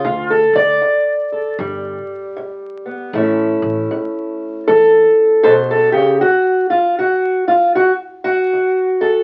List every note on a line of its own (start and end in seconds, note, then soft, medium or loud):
0.04 0.76 D2 medium
0.04 0.43 D2 loud
0.04 0.30 F4 medium
0.30 0.56 A4 medium
0.53 0.75 D2 medium
0.53 2.87 D5 loud
0.82 1.53 D2 medium
1.32 1.56 A4 soft
1.59 1.97 G1 loud
1.59 2.30 G2 medium
1.59 3.13 G3 medium
2.36 3.07 G2 medium
2.86 3.13 B3 soft
3.13 3.51 A1 loud
3.13 3.85 A2 medium
3.13 6.19 A3 medium
3.13 6.19 C#4 medium
3.13 5.44 E4 medium
3.62 3.84 A1 loud
3.91 4.62 A2 medium
4.67 5.05 E2 loud
4.67 5.39 A2 medium
4.67 5.42 A4 loud
5.43 5.93 B2 medium
5.43 5.51 A4 loud
5.43 5.70 C5 loud
5.71 5.92 A4 loud
5.92 6.21 C#3 medium
5.92 6.21 G4 loud
6.21 6.93 D2 medium
6.21 6.70 F#4 loud
6.70 6.98 F4 medium
6.99 7.70 D2 medium
6.99 7.47 F#4 medium
7.48 7.75 F4 medium
7.75 8.47 D2 medium
7.75 7.91 F#4 medium
8.24 9.23 F#4 medium
8.53 9.23 D2 medium
9.01 9.23 A4 loud